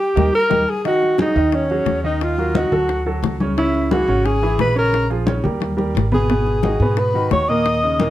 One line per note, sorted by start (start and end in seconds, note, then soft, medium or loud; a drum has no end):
0.00 0.31 G4 medium
0.00 0.31 G5 medium
0.16 0.29 D#2 medium
0.16 0.27 D#4 medium
0.16 0.27 G4 medium
0.16 0.27 A#4 medium
0.16 low bongo medium
0.16 high conga medium
0.34 0.72 A#4 loud
0.34 0.70 A#5 medium
0.50 0.64 D#2 medium
0.50 0.61 D#4 medium
0.50 0.61 G4 medium
0.50 0.61 A#4 loud
0.50 low bongo medium
0.50 high conga medium
0.68 0.86 G#4 medium
0.68 0.85 G#5 medium
0.85 1.13 D#3 medium
0.85 1.13 D#4 medium
0.85 1.18 F#4 medium
0.85 1.13 D#5 medium
0.85 1.17 F#5 medium
0.85 high bongo medium
0.85 high conga soft
1.02 high bongo soft
1.02 high conga soft
1.18 1.33 F#3 medium
1.18 1.57 D#4 medium
1.18 1.33 F#4 medium
1.18 1.33 G#4 medium
1.18 1.56 D#5 medium
1.18 high bongo medium
1.18 high conga medium
1.35 1.83 D#2 medium
1.35 1.64 D#3 medium
1.35 1.64 D#4 medium
1.35 1.64 D#5 medium
1.35 high bongo soft
1.35 high conga soft
1.52 2.05 C#4 medium
1.52 2.04 C#5 medium
1.52 high bongo medium
1.52 high conga soft
1.70 1.98 F#3 medium
1.70 1.98 F#4 medium
1.70 1.99 G#4 medium
1.70 high bongo soft
1.70 high conga soft
1.86 2.66 D#2 medium
1.86 high bongo medium
1.86 low bongo medium
1.86 high conga soft
2.04 2.32 D#3 medium
2.04 2.32 D#4 medium
2.04 2.24 D#4 medium
2.04 2.32 D#5 medium
2.04 2.25 D#5 medium
2.04 high conga soft
2.21 2.59 F4 medium
2.21 2.58 F5 medium
2.21 high bongo medium
2.21 high conga soft
2.38 2.52 F#3 medium
2.38 2.52 F#4 medium
2.38 2.52 A#4 medium
2.38 high bongo soft
2.38 high conga soft
2.55 2.69 D#3 medium
2.55 2.69 D#4 medium
2.55 3.07 F#4 medium
2.55 2.69 D#5 medium
2.55 3.07 F#5 medium
2.55 high bongo medium
2.55 high conga loud
2.71 3.19 D2 medium
2.71 3.00 F#3 medium
2.71 3.00 F#4 medium
2.71 3.00 A4 medium
2.71 high bongo soft
2.71 high conga soft
2.71 low conga medium
2.89 high bongo medium
2.89 high conga soft
3.06 3.34 F#3 medium
3.06 3.34 F#4 medium
3.06 3.34 A4 medium
3.06 high conga soft
3.23 4.02 C#2 medium
3.23 high bongo medium
3.23 low bongo medium
3.23 high conga soft
3.40 3.54 C#3 medium
3.40 3.54 C#4 medium
3.40 3.55 C#5 medium
3.40 high bongo soft
3.40 high conga medium
3.57 3.85 C#3 medium
3.57 3.85 C#4 medium
3.57 3.89 E4 medium
3.57 3.85 C#5 medium
3.57 3.89 E5 medium
3.57 high bongo medium
3.57 high conga soft
3.75 high bongo soft
3.75 high conga soft
3.91 4.05 E3 medium
3.91 4.05 E4 medium
3.91 4.27 F#4 medium
3.91 4.05 G#4 medium
3.91 4.26 F#5 medium
3.91 high bongo medium
3.91 high conga loud
4.08 4.55 G#1 medium
4.08 4.36 C#3 medium
4.08 4.36 C#4 medium
4.08 4.37 C#5 medium
4.08 high bongo soft
4.08 high conga soft
4.25 4.59 G#4 medium
4.25 4.58 G#5 medium
4.25 high bongo medium
4.25 high conga soft
4.42 4.70 E3 medium
4.42 4.71 E4 medium
4.42 4.71 G#4 medium
4.42 high bongo soft
4.42 high conga soft
4.59 5.38 A#1 medium
4.59 4.76 B4 loud
4.59 4.75 B5 medium
4.59 high bongo medium
4.59 low bongo medium
4.59 high conga soft
4.76 5.04 C#3 medium
4.76 5.04 C#4 medium
4.76 5.09 A#4 loud
4.76 5.04 C#5 medium
4.76 5.08 A#5 medium
4.76 high conga soft
4.93 high bongo medium
4.93 high conga soft
5.10 5.24 F3 medium
5.10 5.24 F4 medium
5.10 5.24 G#4 medium
5.10 high bongo soft
5.10 high conga soft
5.26 5.41 C#3 medium
5.26 5.41 C#4 medium
5.26 5.41 C#5 medium
5.26 high bongo medium
5.26 high conga medium
5.44 5.92 D#2 medium
5.44 5.72 G3 medium
5.44 5.72 G4 medium
5.44 5.72 A#4 medium
5.44 high bongo soft
5.44 high conga soft
5.44 low conga medium
5.60 high bongo medium
5.60 high conga medium
5.77 6.05 G3 medium
5.77 6.06 G4 medium
5.77 6.06 A#4 medium
5.77 high conga medium
5.95 6.74 G#1 medium
5.95 high bongo medium
5.95 low bongo medium
6.12 6.26 B2 medium
6.12 6.26 B3 medium
6.12 7.00 G#4 medium
6.12 6.26 B4 medium
6.12 7.00 G#5 medium
6.12 high bongo soft
6.12 low conga medium
6.29 6.57 B2 medium
6.29 6.57 B3 medium
6.29 6.57 B4 medium
6.29 high bongo medium
6.29 high conga soft
6.46 high bongo soft
6.46 high conga soft
6.63 6.77 D#3 medium
6.63 6.78 D#4 medium
6.63 6.78 F#4 medium
6.63 high bongo medium
6.63 high conga medium
6.80 7.28 G#2 medium
6.80 7.09 B2 medium
6.80 7.09 B3 medium
6.80 7.09 B4 medium
6.80 high bongo soft
6.80 high conga soft
6.97 7.32 B4 medium
6.97 7.30 B5 medium
6.97 high bongo medium
6.97 high conga soft
7.14 7.43 D#3 medium
7.14 7.43 D#4 medium
7.14 7.43 F#4 medium
7.14 high bongo soft
7.14 high conga soft
7.31 8.10 D#2 medium
7.31 7.51 C#5 loud
7.31 7.50 C#6 medium
7.31 high bongo medium
7.31 low bongo medium
7.31 high conga soft
7.48 7.77 A#2 medium
7.48 7.77 A#3 medium
7.48 7.77 A#4 medium
7.48 8.10 D#5 loud
7.48 8.10 D#6 medium
7.48 high conga soft
7.65 high bongo medium
7.65 high conga soft
7.82 7.97 C#3 medium
7.82 7.97 C#4 medium
7.82 7.97 D#4 medium
7.82 high bongo soft
7.82 high conga soft
7.99 8.10 A#2 medium
7.99 8.10 A#3 medium
7.99 8.10 A#4 medium
7.99 high bongo medium
7.99 high conga medium